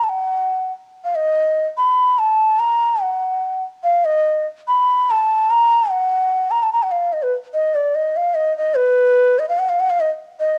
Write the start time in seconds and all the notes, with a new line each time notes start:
0.04 A5
0.10 F#5
1.04 F5
1.15 D#5
1.78 B5
2.19 A5
2.60 A#5
3.02 F#5
3.84 F5
4.05 D#5
4.68 B5
5.11 A5
5.50 A#5
5.90 F#5
6.51 A#5
6.63 A5
6.73 A#5
6.83 F#5
6.92 F5
7.13 D#5
7.23 B4
7.54 D#5
7.75 D5
7.95 D#5
8.16 F5
8.34 D#5
8.57 D#5
8.76 B4
9.39 D#5
9.49 F5
9.59 F#5
9.69 F5
9.80 F#5
9.90 F5
10.00 D#5
10.40 D#5